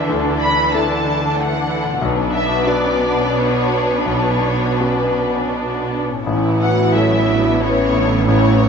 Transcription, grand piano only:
0.00 0.09 D2 soft
0.00 0.12 D4 soft
0.00 0.12 E4 soft
0.00 0.11 A4 soft
0.09 0.73 D2 soft
0.74 1.99 D4 soft
0.74 1.99 E4 soft
0.74 1.99 A4 soft
2.01 2.65 B1 soft
2.66 4.03 D4 soft
2.66 4.03 F#4 soft
2.66 4.03 B4 soft
4.05 4.78 B1 soft
4.79 6.22 C#4 soft
4.79 6.23 F#4 soft
4.79 6.23 B4 soft
6.27 6.93 A1 soft
6.95 8.24 E4 soft
6.95 8.24 A4 soft
6.95 8.25 C#5 soft
8.28 8.69 A1 soft

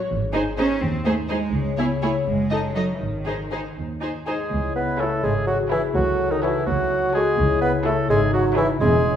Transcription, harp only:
0.00 0.12 A2 medium
0.00 0.12 C#4 soft
0.00 0.12 F#4 soft
0.00 0.12 C#5 soft
0.10 1.55 G#2 medium
0.34 1.28 G#3 soft
0.58 1.04 D#4 soft
0.82 1.55 C5 soft
1.05 1.55 D#4 soft
1.30 1.77 G#3 soft
1.54 2.28 C#3 medium
1.78 2.28 G#3 soft
2.02 2.28 E4 soft
2.02 2.28 C#5 soft
2.27 3.03 F#2 soft
2.50 3.03 A3 soft
2.75 3.51 D#4 soft
2.75 4.53 D#5 soft
3.01 4.53 G#2 soft
3.27 4.26 G#3 soft
3.53 4.01 D#4 soft
3.77 4.54 C5 soft
4.02 4.54 D#4 soft
4.27 5.46 G#3 soft
4.51 5.94 C#3 soft
4.76 5.22 E4 soft
5.00 6.41 C#4 soft
5.23 5.70 E4 soft
5.47 5.97 G#3 soft
5.95 7.37 C#3 medium
6.19 6.65 F#4 soft
6.42 7.84 C#4 soft
6.67 7.13 F#4 soft
6.90 7.40 A3 soft
7.14 7.40 F#4 soft
7.38 8.83 C#3 medium
7.62 8.08 E4 soft
7.86 9.16 C#4 soft
8.09 8.56 E4 medium
8.33 9.16 G#3 soft
8.57 9.16 E4 medium
8.81 9.16 E3 medium
9.05 9.16 C#5 soft

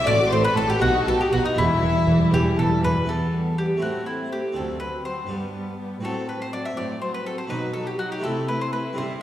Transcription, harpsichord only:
0.04 0.29 A2 medium
0.04 0.78 C4 medium
0.04 0.79 F#4 medium
0.31 0.54 A2 medium
0.56 0.79 A2 medium
0.78 1.04 B2 medium
0.78 1.52 B3 medium
0.78 1.54 D#4 medium
1.06 1.29 B2 medium
1.31 1.54 B2 medium
1.53 1.80 E2 medium
1.53 3.02 B3 medium
1.53 3.03 E4 medium
1.81 2.05 E2 medium
2.07 2.30 E2 medium
2.31 2.55 E2 medium
2.57 2.80 E2 medium
2.82 3.05 E2 medium
3.04 3.71 E2 soft
3.04 3.78 B3 soft
3.04 3.78 E4 soft
3.77 4.44 A2 soft
3.77 4.51 A3 soft
3.77 4.51 C4 soft
3.77 4.53 E4 soft
4.52 5.18 D2 soft
4.52 5.26 C4 soft
4.52 5.27 D4 soft
5.27 5.92 G2 soft
5.27 6.00 B3 soft
5.27 6.01 D4 soft
6.01 6.66 A2 soft
6.01 7.45 C4 soft
6.01 7.45 F#4 soft
6.77 7.39 A2 soft
7.47 8.12 B2 soft
7.47 8.20 B3 soft
7.47 8.20 D#4 soft
8.18 8.92 A3 soft
8.18 8.92 C4 soft
8.18 8.93 E4 soft
8.23 8.85 C3 soft
8.93 9.22 C3 soft
8.93 9.22 C4 soft
8.93 9.22 E4 soft

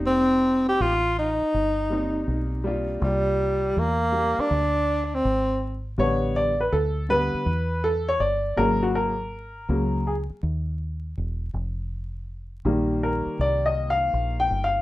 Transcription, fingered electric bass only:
0.00 0.76 F1 medium
0.80 1.38 A1 medium
1.54 2.24 G1 medium
2.28 2.98 B1 medium
3.02 3.72 C2 loud
3.77 4.35 E2 medium
4.38 muted fingered electric bass stroke soft
4.51 5.21 D2 loud
5.25 5.95 G#1 medium
5.98 6.68 A1 loud
6.72 7.31 D2 medium
7.34 muted fingered electric bass stroke soft
7.46 8.17 E2 medium
8.20 8.55 G1 medium
8.57 9.65 G#1 medium
9.69 10.27 C#2 medium
10.30 muted fingered electric bass stroke soft
10.43 11.13 D#2 medium
11.18 11.52 E1 medium
11.54 12.61 F1 medium
12.65 13.23 A#1 loud
13.26 muted fingered electric bass stroke soft
13.39 14.09 C2 medium
14.14 14.48 A#1 medium
14.50 14.82 G1 medium

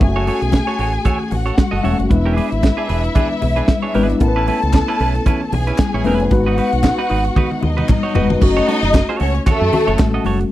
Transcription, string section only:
0.01 1.30 G#4 medium
0.01 1.30 G#5 medium
1.32 2.09 F#4 medium
1.32 2.09 F#5 medium
2.10 4.17 E4 medium
2.10 4.17 E5 medium
4.20 5.50 A4 medium
4.20 5.49 A5 loud
5.52 6.30 G#4 medium
5.52 6.29 G#5 medium
6.32 7.60 F#4 medium
6.32 7.60 F#5 medium
7.63 8.40 D#4 medium
7.63 8.40 D#5 medium
8.42 9.17 D#4 loud
8.42 9.17 D#5 loud
9.20 9.41 C#4 medium
9.20 9.41 C#5 medium
9.46 10.21 A3 loud
9.46 10.21 A4 loud

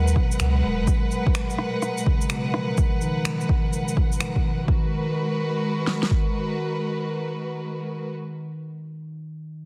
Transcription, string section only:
0.00 4.65 G#3 medium
0.00 4.64 A#4 medium
0.00 4.64 B4 medium
0.00 4.64 F#5 medium
4.69 8.10 G#3 medium
4.69 8.10 F#4 medium
4.69 8.10 A#4 medium
4.69 8.10 B4 medium

